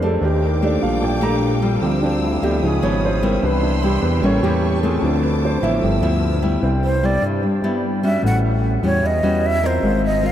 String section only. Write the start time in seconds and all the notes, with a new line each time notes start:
0.22 A4 F5 G5 D6
1.83 C5 E6
2.64 C#5 B5 D#6
3.43 G5 B5 C6 E6
4.22 A#4 A5 C#6
5.03 C5 D6
5.82 B4 E6